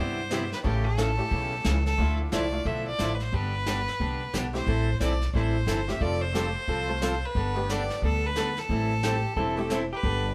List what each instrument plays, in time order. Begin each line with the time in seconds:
Already playing: upright bass G2
0.00 steel-string acoustic guitar C3 G3 B3 E4 G4, fiddle C5
0.30 steel-string acoustic guitar C3 G3 B3 E4 G4, honky-tonk piano B3 C4 E4 G4, snare, hi-hat pedal
0.52 fiddle B4, snare
0.63 upright bass A1, steel-string acoustic guitar C#3 E3 A3 C#4 A4, honky-tonk piano A3 C#4 E4 A4, fiddle G4, brush sweep, kick
0.85 fiddle A4
0.97 steel-string acoustic guitar C#3 E3 A3 C#4 A4, snare, hi-hat pedal
1.17 honky-tonk piano A3 C#4 E4 G4
1.31 upright bass B1, steel-string acoustic guitar C#3 E3 A3 C#4 A4, brush sweep, kick
1.64 upright bass C#2, steel-string acoustic guitar C#3 E3 A3 C#4 A4, snare, hi-hat pedal
1.86 fiddle A4, snare
1.98 upright bass D2, steel-string acoustic guitar D3 F3 A3 E4, honky-tonk piano A3 D4 E4 F4, brush sweep, kick
2.32 upright bass C2, steel-string acoustic guitar D3 F3 A3 E4, fiddle D5, snare, hi-hat pedal
2.52 honky-tonk piano A3 D4 E4 F4
2.65 upright bass B1, steel-string acoustic guitar D3 F3 A3 E4, fiddle E5, brush sweep, kick
2.87 fiddle D5
2.99 upright bass A1, steel-string acoustic guitar D3 F3 A3 E4, snare, hi-hat pedal
3.14 fiddle B4
3.20 fiddle C5, snare
3.32 upright bass G1, steel-string acoustic guitar D3 G3 B3 D4 G4, fiddle B4, brush sweep, kick
3.66 steel-string acoustic guitar D3 G3 B3 D4 G4, snare, hi-hat pedal
3.88 snare
4.00 upright bass C2, steel-string acoustic guitar D3 G3 B3 D4 G4, brush sweep, kick
4.33 upright bass B1, steel-string acoustic guitar D3 G3 B3 D4 G4, snare, hi-hat pedal
4.53 honky-tonk piano A3 C4 E4 G4, fiddle C5, snare
4.66 upright bass A1, steel-string acoustic guitar E3 G3 C4 E4 A4, brush sweep, kick
5.00 upright bass B1, steel-string acoustic guitar E3 G3 C4 E4 A4, fiddle D5, snare, hi-hat pedal
5.22 snare
5.34 upright bass A1, steel-string acoustic guitar E3 G3 C4 E4 A4, fiddle C5, brush sweep, kick
5.67 upright bass G1, steel-string acoustic guitar E3 G3 C4 E4 A4, snare, hi-hat pedal
5.87 honky-tonk piano A3 C4 F4 G4, fiddle E5, snare
6.01 upright bass F1, steel-string acoustic guitar F3 G3 C4 F4 A4, fiddle D5, brush sweep, kick
6.21 fiddle C5
6.33 steel-string acoustic guitar F3 G3 C4 F4 A4, honky-tonk piano A3 C4 F4 G4, snare, hi-hat pedal
6.68 upright bass C2, steel-string acoustic guitar F3 G3 C4 F4 A4, brush sweep, kick
6.88 honky-tonk piano A3 C4 F4 A4
7.01 steel-string acoustic guitar F3 G3 C4 F4 A4, snare, hi-hat pedal
7.25 fiddle B4
7.35 upright bass G1, steel-string acoustic guitar G3 B3 D4 A4, brush sweep, kick
7.55 honky-tonk piano A3 B3 D4 G4
7.69 steel-string acoustic guitar G3 B3 D4 A4, fiddle D5, snare, hi-hat pedal
7.90 snare
8.02 upright bass D2, steel-string acoustic guitar G3 B3 D4 A4, fiddle A4, brush sweep, kick
8.26 fiddle B4
8.36 steel-string acoustic guitar G3 B3 D4 A4, snare, hi-hat pedal
8.57 fiddle A4, snare
8.69 upright bass A1, steel-string acoustic guitar E3 G3 C4 E4 A4, brush sweep, kick
9.03 steel-string acoustic guitar E3 G3 C4 E4 A4, electric slide guitar G4, snare, hi-hat pedal
9.36 upright bass E1, steel-string acoustic guitar E3 G3 C4 E4 A4, electric slide guitar A4, brush sweep, kick
9.57 honky-tonk piano A3 C4 E4 G4, electric slide guitar A4
9.70 steel-string acoustic guitar E3 G3 C4 E4 A4, snare, hi-hat pedal
9.93 hollow-body jazz guitar G4, fiddle B4
10.03 upright bass G1, steel-string acoustic guitar G3 B3 D4 A4, brush sweep, kick